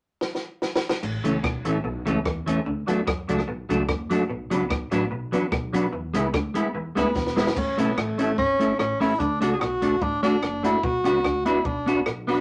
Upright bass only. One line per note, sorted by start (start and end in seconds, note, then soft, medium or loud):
1.03 1.21 A1 loud
1.25 1.41 C#2 medium
1.44 1.62 B1 medium
1.65 1.81 A1 medium
1.84 2.03 B1 medium
2.07 2.23 C#2 medium
2.26 2.60 E2 medium
2.66 2.84 D2 loud
2.88 3.04 E2 medium
3.07 3.26 F#2 medium
3.29 3.45 C#2 medium
3.48 3.66 B1 medium
3.69 3.86 C#2 medium
3.89 4.24 F#1 loud
4.30 4.48 B1 loud
4.51 4.71 C#2 medium
4.71 4.89 B1 medium
4.92 5.08 A1 medium
5.11 5.29 B1 medium
5.33 5.49 E2 medium
5.52 5.87 B1 loud
5.93 6.11 E2 loud
6.14 6.31 C#2 medium
6.34 6.69 D2 medium
6.75 6.93 E2 medium
6.96 7.13 D2 loud
7.16 7.51 E1 loud
7.57 7.75 A1 medium
7.78 7.94 B1 loud
7.97 8.32 A1 medium
8.38 8.73 G#1 medium
8.79 9.14 A1 medium
9.20 9.39 D2 medium
9.42 9.58 C#2 medium
9.61 9.96 B1 medium
10.02 10.37 A1 medium
10.43 10.78 F#1 medium
10.84 11.02 B1 loud
11.06 11.22 C#2 medium
11.25 11.59 D2 medium
11.65 12.00 B1 medium
12.07 12.41 B1 loud